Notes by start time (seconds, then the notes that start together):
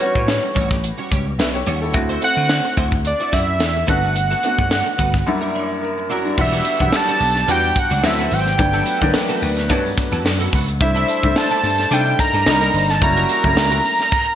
Already playing: C#5
0.00 G3 B3 C#4 F#4, closed hi-hat
0.15 A2, muted clean electric guitar stroke, kick
0.28 snare, closed hi-hat
0.43 muted clean electric guitar stroke
0.55 A1 G3 C#4 F#4, kick, closed hi-hat
0.70 muted clean electric guitar stroke, kick, snare
0.83 muted clean electric guitar stroke, closed hi-hat
0.98 G3 C#4 F#4
1.11 C#2 G3 C#4 G4, kick, closed hi-hat
1.27 muted clean electric guitar stroke
1.39 B1 B4 E5, muted clean electric guitar stroke, snare, closed hi-hat
1.54 G4 C#5, muted clean electric guitar stroke
1.66 D#2 G3 C#4 F#4, closed hi-hat
1.81 G3 C#4 E4 F#4 A4
1.94 D2 A3 C4 E4 F#4, muted clean electric guitar stroke, kick, closed hi-hat
2.09 E4 F#4 C5
2.21 A3 C4 E4 F#4 C5 F#5, closed hi-hat
2.37 D3, muted clean electric guitar stroke
2.49 snare, closed hi-hat
2.64 muted clean electric guitar stroke
2.77 D2 E4 F#4 C5, kick, closed hi-hat
2.92 muted clean electric guitar stroke, kick
3.05 D5, muted clean electric guitar stroke, closed hi-hat
3.20 E4 F#4 C5
3.32 F#2 E4 F#4 D5 E5, kick, snare, closed hi-hat
3.47 muted clean electric guitar stroke
3.60 E2, muted clean electric guitar stroke, snare, closed hi-hat
3.75 muted clean electric guitar stroke
3.87 G1 A3 B3 D4 F#4 A4 F#5, kick, closed hi-hat
4.03 B3 F#4 A4
4.16 muted clean electric guitar stroke, closed hi-hat
4.30 B3 F#4 A4
4.43 A3 B3 D4 F#4 A4, closed hi-hat
4.58 G2, muted clean electric guitar stroke, kick
4.71 snare, closed hi-hat
4.86 muted clean electric guitar stroke
4.98 G1 B3 F#4 A4, kick, closed hi-hat
5.14 muted clean electric guitar stroke, kick, snare
5.26 F#2 G3 A#3 D4 E4, muted clean electric guitar stroke
5.41 D4 E4 A#4
5.54 D4 E4 C#5
5.70 muted clean electric guitar stroke
5.82 E4 A#4, muted clean electric guitar stroke
5.98 muted clean electric guitar stroke
6.10 C#4 D4 E4 F#4 A#4
6.25 G3 D4 E4 A#4
6.37 E1 D3 G3 B3 D4 G4 E5 F#5, muted clean electric guitar stroke, kick, crash, tambourine
6.52 G3 D4 F#4, closed hi-hat
6.65 G3 D4 F#4, closed hi-hat, tambourine
6.80 E1 F#3 B3 D4 F#5, muted clean electric guitar stroke, kick, closed hi-hat
6.86 G3
6.92 A5, muted clean electric guitar stroke, snare, tambourine
7.07 G3 D4 F#4, closed hi-hat
7.20 B1, muted clean electric guitar stroke, open hi-hat, tambourine
7.35 muted clean electric guitar stroke, snare, closed hi-hat, tambourine
7.47 E2 G3 B3 D4 F#4, closed hi-hat, tambourine
7.51 G5
7.63 muted clean electric guitar stroke, closed hi-hat, tambourine
7.76 F#5, muted clean electric guitar stroke, kick, closed hi-hat, tambourine
7.90 C#2 G3 D4 F#4, closed hi-hat, tambourine
8.02 D2 F#3 B3 C4 E4 A4 E5, muted clean electric guitar stroke, snare, tambourine
8.18 C4 F#4 B4, closed hi-hat
8.31 G#1 C4 F#4 C5 G5, open hi-hat, tambourine
8.46 muted clean electric guitar stroke, snare, closed hi-hat
8.57 G1 F#3 A3 B3 D4 B4, muted clean electric guitar stroke, kick, closed hi-hat, tambourine
8.73 B3 F#4 A4, closed hi-hat
8.86 B3 F#4 A4, closed hi-hat, tambourine
9.01 G1 F#3 A3 A#3 D4, muted clean electric guitar stroke, kick, closed hi-hat
9.08 B3
9.14 muted clean electric guitar stroke, snare, tambourine
9.29 B3 F#4 A4
9.42 D2, muted clean electric guitar stroke, open hi-hat, tambourine
9.57 muted clean electric guitar stroke, snare, closed hi-hat, tambourine
9.69 G2 F#3 A3 B3 D4 F#4 A4, kick, closed hi-hat, tambourine
9.84 muted clean electric guitar stroke, closed hi-hat, tambourine
9.97 muted clean electric guitar stroke, kick, snare, closed hi-hat, tambourine
10.12 E2 B3 F#4 A4, closed hi-hat, tambourine
10.25 F#2, snare, tambourine
10.40 B3 F#4 A4, closed hi-hat
10.53 C#2 B3 F#4 B4, kick, open hi-hat, tambourine
10.68 muted clean electric guitar stroke, closed hi-hat
10.80 C2 G3 A3 D4 E4 G4 C5 E5, muted clean electric guitar stroke, kick, closed hi-hat, tambourine
10.95 D4 E4 A4, closed hi-hat
11.07 D4 E4 A4, closed hi-hat, tambourine
11.23 C2 G3 A3 D4 E4, muted clean electric guitar stroke, kick, closed hi-hat
11.36 A5, muted clean electric guitar stroke, snare, tambourine
11.51 D4 E4 A4
11.63 G2, muted clean electric guitar stroke, open hi-hat, tambourine
11.78 muted clean electric guitar stroke, snare, closed hi-hat, tambourine
11.91 C3 G3 A3 D4 D#4 E4 A4 G5, closed hi-hat, tambourine
11.99 E4
12.06 muted clean electric guitar stroke, closed hi-hat, tambourine
12.19 A#5, muted clean electric guitar stroke, kick, snare, closed hi-hat, tambourine
12.33 G2 D4 E4 A4, closed hi-hat, tambourine
12.46 C2 G3 A#3 D4 D#4 A#4, muted clean electric guitar stroke, snare, tambourine
12.61 C4 D#4 A#4, closed hi-hat
12.74 G1 C4 D#4 C5, open hi-hat, tambourine
12.89 A5, muted clean electric guitar stroke, snare, closed hi-hat
13.01 F#1 C#3 G3 A#3 C#4 E4 F#4 A#5, muted clean electric guitar stroke, kick, closed hi-hat, tambourine
13.17 E4 G4 A#4, closed hi-hat
13.29 E4 G4 A#4, closed hi-hat, tambourine
13.43 F#1 G3 A3 C#4 E4, muted clean electric guitar stroke, kick, closed hi-hat
13.50 A#3
13.56 C#2, muted clean electric guitar stroke, snare, tambourine
13.71 E4 G4 A#4, tambourine
13.84 muted clean electric guitar stroke, open hi-hat, tambourine
13.99 muted clean electric guitar stroke, snare, closed hi-hat, tambourine
14.12 kick, crash